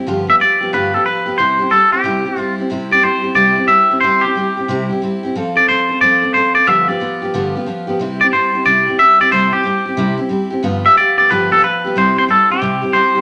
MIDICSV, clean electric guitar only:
0, 0, Header, 1, 2, 480
1, 0, Start_track
1, 0, Key_signature, 0, "major"
1, 0, Tempo, 330396
1, 84, Time_signature, 4, 2, 24, 8
1, 19192, End_track
2, 0, Start_track
2, 0, Title_t, "Clean electric guitar"
2, 0, Program_c, 0, 27
2, 430, Note_on_c, 0, 76, 100
2, 500, Note_off_c, 0, 76, 0
2, 599, Note_on_c, 0, 74, 100
2, 1030, Note_off_c, 0, 74, 0
2, 1074, Note_on_c, 0, 71, 98
2, 1368, Note_off_c, 0, 71, 0
2, 1368, Note_on_c, 0, 69, 84
2, 1531, Note_off_c, 0, 69, 0
2, 1536, Note_on_c, 0, 71, 90
2, 2002, Note_on_c, 0, 72, 97
2, 2025, Note_off_c, 0, 71, 0
2, 2485, Note_on_c, 0, 69, 85
2, 2499, Note_off_c, 0, 72, 0
2, 2771, Note_off_c, 0, 69, 0
2, 2796, Note_on_c, 0, 67, 71
2, 3478, Note_off_c, 0, 67, 0
2, 3478, Note_on_c, 0, 65, 71
2, 3698, Note_off_c, 0, 65, 0
2, 4249, Note_on_c, 0, 74, 101
2, 4408, Note_off_c, 0, 74, 0
2, 4408, Note_on_c, 0, 72, 88
2, 4866, Note_off_c, 0, 72, 0
2, 4871, Note_on_c, 0, 74, 97
2, 5337, Note_off_c, 0, 74, 0
2, 5343, Note_on_c, 0, 76, 96
2, 5814, Note_off_c, 0, 76, 0
2, 5820, Note_on_c, 0, 72, 104
2, 6121, Note_on_c, 0, 67, 85
2, 6152, Note_off_c, 0, 72, 0
2, 7043, Note_off_c, 0, 67, 0
2, 8088, Note_on_c, 0, 74, 90
2, 8255, Note_off_c, 0, 74, 0
2, 8260, Note_on_c, 0, 72, 79
2, 8705, Note_off_c, 0, 72, 0
2, 8734, Note_on_c, 0, 74, 103
2, 9182, Note_off_c, 0, 74, 0
2, 9212, Note_on_c, 0, 72, 93
2, 9499, Note_off_c, 0, 72, 0
2, 9514, Note_on_c, 0, 74, 97
2, 9693, Note_off_c, 0, 74, 0
2, 9693, Note_on_c, 0, 76, 114
2, 9996, Note_off_c, 0, 76, 0
2, 9996, Note_on_c, 0, 74, 98
2, 10960, Note_off_c, 0, 74, 0
2, 11925, Note_on_c, 0, 74, 101
2, 11998, Note_off_c, 0, 74, 0
2, 12102, Note_on_c, 0, 72, 86
2, 12545, Note_off_c, 0, 72, 0
2, 12576, Note_on_c, 0, 74, 100
2, 13056, Note_off_c, 0, 74, 0
2, 13062, Note_on_c, 0, 76, 117
2, 13343, Note_off_c, 0, 76, 0
2, 13379, Note_on_c, 0, 74, 96
2, 13532, Note_off_c, 0, 74, 0
2, 13540, Note_on_c, 0, 72, 96
2, 13822, Note_off_c, 0, 72, 0
2, 13845, Note_on_c, 0, 67, 94
2, 14744, Note_off_c, 0, 67, 0
2, 15771, Note_on_c, 0, 76, 109
2, 15927, Note_off_c, 0, 76, 0
2, 15944, Note_on_c, 0, 74, 93
2, 16223, Note_off_c, 0, 74, 0
2, 16242, Note_on_c, 0, 74, 100
2, 16419, Note_off_c, 0, 74, 0
2, 16426, Note_on_c, 0, 71, 98
2, 16703, Note_off_c, 0, 71, 0
2, 16738, Note_on_c, 0, 69, 94
2, 16904, Note_off_c, 0, 69, 0
2, 16910, Note_on_c, 0, 71, 95
2, 17393, Note_off_c, 0, 71, 0
2, 17403, Note_on_c, 0, 72, 91
2, 17671, Note_off_c, 0, 72, 0
2, 17702, Note_on_c, 0, 72, 93
2, 17774, Note_off_c, 0, 72, 0
2, 17877, Note_on_c, 0, 69, 83
2, 18148, Note_off_c, 0, 69, 0
2, 18182, Note_on_c, 0, 67, 75
2, 18790, Note_on_c, 0, 72, 89
2, 19067, Note_off_c, 0, 67, 0
2, 19192, Note_off_c, 0, 72, 0
2, 19192, End_track
0, 0, End_of_file